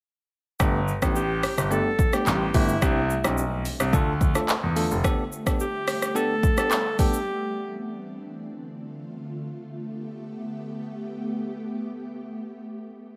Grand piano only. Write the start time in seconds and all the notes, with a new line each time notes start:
0.60 G1
1.02 A1
1.58 G1
2.27 A1
2.54 G1
2.82 C2
3.24 B1
3.80 C2
3.93 D2
4.63 E2
4.91 F1